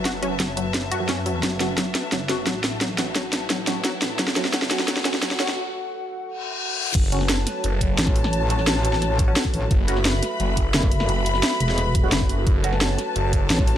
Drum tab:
CC |----------------|----------------|----------------|----------------|
HH |x-x-x-x-x-x-x-o-|x-x-x-x-x-x-x-o-|x-x-x-x-x-x-x-o-|x-x-x-x-x-x-x-o-|
SD |o---o---o---o---|o-o-o-o-o-o-o-o-|o-o-o-o-o-o-o-o-|oooooooooooooooo|
BD |o---o---o---o---|o---o---o---o---|o---o---o---o---|o---o---o---o---|

CC |----------------|x---------------|----------------|----------------|
HH |----------------|x-x-x-x-x-x-x-o-|x-x-x-x-x-x-x-o-|x-x-x-x-x-x-x-o-|
SD |----------------|---oo-o-----oo-o|---oo--oo---o---|---oo-o-----oo-o|
BD |----------------|o---------o--o--|----------o--o--|o---------o--o--|

CC |----------------|----------------|
HH |x-x-x-x-x-x-x-o-|x-x-x-x-x-x-x-o-|
SD |---oo--oo---o---|---oo-o-----oo--|
BD |----------o--o--|o---------o--o--|